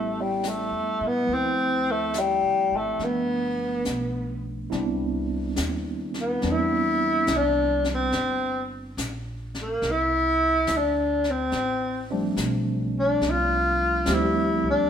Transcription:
0.00 0.67 A1 medium
0.00 1.26 G3 soft
0.00 0.23 A3 medium
0.00 1.28 B3 soft
0.00 1.30 C#4 soft
0.00 1.31 E4 soft
0.21 0.50 G3 medium
0.43 snare soft
0.43 hi-hat pedal soft
0.48 1.08 A3 medium
0.71 0.98 E2 soft
1.01 1.27 A2 soft
1.07 1.35 B3 medium
1.23 2.96 F3 soft
1.23 2.98 A3 soft
1.28 2.38 D2 medium
1.28 3.00 C4 soft
1.28 brush sweep soft
1.33 1.93 C4 medium
1.33 3.02 E4 soft
1.91 2.21 A3 medium
2.14 snare soft
2.14 hi-hat pedal soft
2.19 2.78 G3 medium
2.43 2.69 C2 soft
2.71 2.98 G#1 soft
2.77 3.05 A3 medium
2.99 3.82 G1 medium
2.99 4.71 F3 soft
2.99 4.71 A3 soft
2.99 4.70 B3 soft
2.99 4.71 D4 soft
2.99 brush sweep soft
2.99 snare soft
3.04 4.46 B3 medium
3.85 4.68 B1 medium
3.85 snare soft
3.85 hi-hat pedal soft
4.70 5.55 C2 medium
4.70 6.02 G3 soft
4.70 6.03 B3 medium
4.70 6.03 C4 medium
4.70 6.03 D4 medium
4.70 6.02 E4 medium
4.70 brush sweep soft
4.70 snare soft
5.56 6.40 D#2 medium
5.56 snare medium
5.56 hi-hat pedal medium
6.14 snare soft
6.20 6.52 B3 medium
6.42 7.25 E2 medium
6.42 6.94 E3 soft
6.42 6.94 G3 soft
6.42 6.94 B3 soft
6.42 6.94 C4 soft
6.42 6.95 D4 medium
6.42 brush sweep soft
6.42 snare soft
6.51 7.38 E4 medium
7.27 8.10 C2 medium
7.27 snare soft
7.27 hi-hat pedal soft
7.36 7.89 D4 medium
7.84 snare soft
7.94 8.70 C4 medium
8.12 8.95 G1 medium
8.12 brush sweep soft
8.12 snare soft
8.97 9.79 A#1 medium
8.97 snare medium
8.97 hi-hat pedal medium
9.55 snare soft
9.61 9.92 A#3 medium
9.82 10.64 C2 medium
9.82 brush sweep soft
9.82 snare soft
9.91 10.78 E4 medium
10.67 11.49 D2 medium
10.67 snare soft
10.67 hi-hat pedal soft
10.77 11.32 D4 medium
11.24 snare soft
11.30 12.12 C4 medium
11.52 12.34 A1 medium
11.52 brush sweep soft
11.52 snare soft
12.10 12.35 F3 medium
12.10 12.35 G3 medium
12.10 12.35 A3 medium
12.10 12.35 C4 medium
12.10 12.35 D4 medium
12.36 13.19 B1 medium
12.36 snare medium
12.36 hi-hat pedal soft
12.99 13.32 D4 medium
13.21 14.04 C2 medium
13.21 brush sweep soft
13.21 snare soft
13.30 14.16 F4 medium
14.06 14.89 D2 medium
14.06 14.59 F3 medium
14.06 14.59 G3 medium
14.06 14.59 A3 medium
14.06 14.59 C4 medium
14.06 14.59 G4 medium
14.06 snare medium
14.06 hi-hat pedal soft
14.14 14.67 E4 medium
14.64 kick medium
14.70 14.90 D4 medium

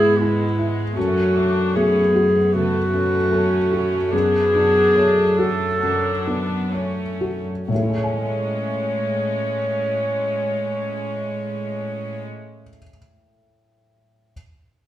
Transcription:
0.00 0.93 G#2 soft
0.00 0.96 G#2 soft
0.00 0.18 B3 soft
0.00 0.98 B3 soft
0.00 0.20 E4 soft
0.00 0.59 E4 soft
0.00 0.21 G#4 soft
0.00 0.22 G#4 medium
0.20 0.57 G#3 soft
0.20 0.95 B3 soft
0.20 0.69 E4 medium
0.20 0.81 G#4 soft
0.58 0.96 G#3 soft
0.58 0.97 E4 soft
0.96 7.45 F#2 soft
0.96 2.49 F#2 soft
0.96 1.74 A3 soft
0.96 1.34 C#4 soft
0.96 1.78 F#4 medium
1.36 1.99 C#4 soft
1.36 1.75 D4 soft
1.75 2.38 A3 soft
1.75 2.12 B3 soft
1.75 2.14 C#4 soft
1.75 2.55 G#4 medium
2.14 3.29 B3 soft
2.14 2.77 F#4 soft
2.53 3.17 C#3 soft
2.53 2.91 A3 soft
2.53 4.11 F#4 medium
2.92 4.10 A3 soft
2.92 3.56 C#4 soft
3.32 3.71 C#4 soft
3.32 3.96 A4 soft
3.72 4.12 C#4 soft
3.72 4.13 F#4 soft
4.12 5.78 F#2 soft
4.12 4.96 B3 soft
4.12 5.81 D4 soft
4.12 5.39 G#4 medium
4.55 5.22 D4 soft
4.96 5.37 A3 soft
4.96 5.65 C#5 soft
5.38 5.82 A3 soft
5.38 6.09 F#4 soft
5.38 6.73 A4 medium
5.82 7.67 F#2 soft
5.82 6.26 F#3 soft
5.82 6.72 D4 soft
6.26 6.73 B3 soft
6.26 7.02 D4 soft
6.72 7.45 A3 soft
6.72 7.45 C#4 soft
6.72 7.51 C#5 soft
7.21 7.70 F#4 soft
7.68 12.62 A2 soft
7.68 12.22 A2 soft
7.68 12.22 G#3 soft
7.68 12.22 C#4 soft
7.68 12.22 C#5 soft
7.75 12.69 A3 soft
7.83 12.76 E4 soft
7.89 12.83 G#4 soft
7.96 12.90 C#5 soft
8.03 12.97 G#5 soft

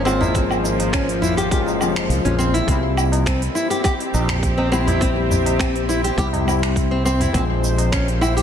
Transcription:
0.00 1.81 G#1 loud
0.00 1.83 F3 loud
0.00 2.68 F3 medium
0.00 0.05 G#3 medium
0.00 3.92 A#3 medium
0.00 2.69 C5 medium
0.05 0.31 G#3 medium
0.05 0.20 C4 loud
0.05 0.32 C#4 medium
0.05 0.32 F4 loud
0.05 cabasa medium
0.05 low woodblock medium
0.21 0.34 E4 medium
0.21 tabla na medium
0.21 tabla ge medium
0.21 cabasa soft
0.34 0.57 G#3 medium
0.34 0.44 C4 medium
0.34 0.58 C#4 medium
0.34 0.58 F4 medium
0.34 kick loud
0.34 open hi-hat medium
0.34 cabasa soft
0.51 cabasa soft
0.51 low woodblock medium
0.64 tabla tin medium
0.64 cabasa medium
0.80 open hi-hat soft
0.80 tabla na medium
0.80 cabasa soft
0.93 1.08 C#4 medium
0.93 finger snap medium
0.93 kick loud
0.93 open hi-hat medium
0.93 cabasa soft
1.09 open hi-hat soft
1.22 1.37 E4 medium
1.22 tabla ge medium
1.22 cabasa medium
1.37 1.50 G4 medium
1.37 open hi-hat soft
1.37 cabasa soft
1.51 1.77 G#3 medium
1.51 1.78 C#4 medium
1.51 1.78 F4 medium
1.51 1.60 G4 loud
1.51 kick medium
1.51 open hi-hat medium
1.51 cabasa soft
1.66 tabla na medium
1.66 cabasa soft
1.81 2.11 F1 loud
1.81 2.23 F3 loud
1.81 2.22 G#3 medium
1.81 2.22 C#4 medium
1.81 cabasa medium
1.81 low woodblock medium
1.96 finger snap medium
1.96 open hi-hat soft
1.96 cabasa soft
2.09 2.19 C#2 medium
2.09 open hi-hat medium
2.09 cabasa soft
2.25 2.60 A#1 medium
2.25 2.65 G#3 medium
2.25 2.38 C#4 medium
2.25 2.65 C#4 medium
2.25 2.66 F4 medium
2.25 open hi-hat soft
2.25 tabla tin soft
2.25 tabla ge medium
2.39 2.53 C4 medium
2.39 cabasa medium
2.54 2.67 E4 medium
2.54 open hi-hat soft
2.54 cabasa soft
2.67 3.47 C2 loud
2.67 4.68 G3 medium
2.67 7.34 C4 medium
2.67 2.77 C4 loud
2.67 4.69 C4 medium
2.67 kick loud
2.67 open hi-hat medium
2.67 cabasa soft
2.71 4.70 E4 loud
2.85 8.27 G4 medium
2.97 tabla tin medium
2.97 cabasa medium
2.97 low woodblock medium
3.12 open hi-hat soft
3.12 tabla na medium
3.12 cabasa soft
3.26 3.41 C4 medium
3.26 finger snap medium
3.26 kick loud
3.26 open hi-hat medium
3.26 cabasa soft
3.42 open hi-hat soft
3.55 3.70 E4 medium
3.55 cabasa medium
3.69 3.83 G4 medium
3.69 8.42 C5 medium
3.69 open hi-hat soft
3.69 cabasa soft
3.84 3.93 G4 loud
3.84 kick loud
3.84 open hi-hat medium
3.84 cabasa soft
3.84 low woodblock medium
4.00 8.42 E5 medium
4.00 open hi-hat soft
4.00 tabla tin medium
4.14 6.10 A#1 medium
4.14 tabla na medium
4.14 cabasa medium
4.29 finger snap medium
4.29 open hi-hat soft
4.29 tabla ge medium
4.29 cabasa soft
4.43 kick loud
4.43 open hi-hat medium
4.43 cabasa soft
4.58 4.71 C4 medium
4.58 tabla na medium
4.71 4.97 G3 loud
4.71 4.86 C4 loud
4.71 4.98 C4 medium
4.71 4.98 E4 loud
4.71 cabasa medium
4.71 low woodblock medium
4.87 5.01 E4 medium
4.87 open hi-hat soft
4.87 tabla na medium
4.87 tabla ge medium
4.87 cabasa soft
5.01 5.23 G3 medium
5.01 5.10 C4 loud
5.01 5.24 C4 medium
5.01 5.24 E4 medium
5.01 kick loud
5.01 open hi-hat medium
5.01 cabasa soft
5.31 tabla tin medium
5.31 tabla ge loud
5.31 cabasa medium
5.46 open hi-hat soft
5.46 tabla na medium
5.46 cabasa soft
5.59 5.74 C4 medium
5.59 finger snap medium
5.59 kick loud
5.59 open hi-hat medium
5.59 cabasa soft
5.59 low woodblock medium
5.76 open hi-hat soft
5.89 6.03 E4 medium
5.89 cabasa medium
6.04 6.16 G4 medium
6.04 open hi-hat soft
6.04 cabasa soft
6.18 7.26 C2 loud
6.18 6.43 G3 medium
6.18 6.44 C4 medium
6.18 6.44 E4 medium
6.18 6.27 G4 loud
6.18 kick loud
6.18 open hi-hat medium
6.18 cabasa soft
6.33 open hi-hat soft
6.33 tabla na medium
6.33 tabla ge medium
6.45 7.30 G3 loud
6.45 7.31 C4 medium
6.45 7.32 E4 loud
6.45 cabasa medium
6.45 low woodblock medium
6.63 finger snap medium
6.63 open hi-hat soft
6.63 cabasa soft
6.76 kick loud
6.76 open hi-hat medium
6.76 cabasa soft
6.91 7.04 C4 medium
7.05 7.20 C4 loud
7.05 cabasa medium
7.20 7.34 E4 medium
7.20 open hi-hat soft
7.20 tabla ge medium
7.20 cabasa soft
7.33 8.42 A#1 loud
7.33 8.42 F3 loud
7.33 8.42 G#3 medium
7.33 8.42 A#3 medium
7.33 7.43 C4 loud
7.33 kick loud
7.33 open hi-hat medium
7.33 cabasa soft
7.33 low woodblock medium
7.64 8.42 F3 medium
7.64 tabla tin medium
7.64 cabasa medium
7.78 open hi-hat soft
7.78 tabla na medium
7.78 cabasa soft
7.92 8.07 C#4 medium
7.92 finger snap medium
7.92 kick loud
7.92 open hi-hat medium
7.92 cabasa soft
8.08 open hi-hat soft
8.21 8.36 E4 medium
8.21 cabasa medium
8.21 low woodblock medium
8.37 8.42 G4 medium
8.37 open hi-hat soft
8.37 cabasa soft

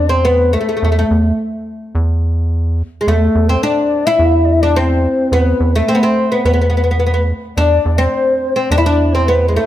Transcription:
0.00 0.57 E2 medium
0.00 0.12 D5 medium
0.09 0.25 C4 medium
0.09 0.28 C5 medium
0.25 0.51 B3 medium
0.25 0.57 B4 medium
0.53 0.59 A3 medium
0.53 1.11 A4 medium
0.61 0.68 A3 soft
0.69 0.76 A3 soft
0.77 0.83 A3 soft
0.82 1.04 E2 loud
0.82 0.91 A3 medium
0.92 0.98 A3 soft
0.99 1.06 A3 medium
1.11 1.32 E2 medium
1.95 2.82 E2 loud
3.01 3.07 G#3 medium
3.06 3.29 E2 loud
3.06 3.51 A3 medium
3.06 3.50 A4 medium
3.35 3.57 E2 medium
3.48 3.63 C4 medium
3.48 3.63 C5 medium
3.62 4.06 D4 medium
3.62 4.08 D5 medium
4.06 4.62 E4 loud
4.06 4.27 E5 medium
4.19 5.07 E2 loud
4.25 4.37 F5 medium
4.35 4.47 E5 medium
4.45 4.54 D5 medium
4.53 4.63 E5 medium
4.61 4.77 D4 medium
4.61 4.78 D5 medium
4.76 5.32 C4 medium
4.76 5.32 C5 medium
5.32 5.54 E2 medium
5.32 5.75 B3 medium
5.32 5.72 B4 medium
5.60 5.82 E2 medium
5.75 5.89 A3 medium
5.75 5.90 A4 medium
5.88 5.96 C4 medium
5.88 6.03 C5 medium
5.95 6.02 B3 medium
6.03 6.32 C4 medium
6.03 6.33 C5 medium
6.32 6.44 B3 medium
6.32 6.44 B4 medium
6.45 7.33 E2 medium
6.45 6.52 B3 medium
6.45 7.25 B4 medium
6.53 6.60 B3 soft
6.61 6.68 B3 soft
6.70 6.76 B3 soft
6.77 6.83 B3 soft
6.84 6.90 B3 soft
6.91 6.98 B3 soft
7.00 7.05 B3 soft
7.06 7.13 B3 soft
7.14 7.20 B3 soft
7.57 7.79 E2 loud
7.57 8.01 D4 medium
7.57 8.01 D5 medium
7.85 8.08 E2 medium
7.98 8.55 C4 medium
7.98 8.56 C5 medium
8.56 8.69 C4 medium
8.56 8.72 C5 medium
8.70 9.59 E2 medium
8.70 8.77 D4 loud
8.70 8.84 D5 medium
8.78 8.85 E4 medium
8.85 9.14 D4 medium
8.85 9.15 D5 medium
9.13 9.28 C4 medium
9.13 9.27 C5 medium
9.26 9.48 B3 medium
9.26 9.37 B4 medium
9.35 9.43 C5 medium
9.41 9.49 B4 medium
9.48 9.55 G#3 soft
9.48 9.57 B4 soft
9.55 9.66 A3 medium
9.55 9.66 A4 medium

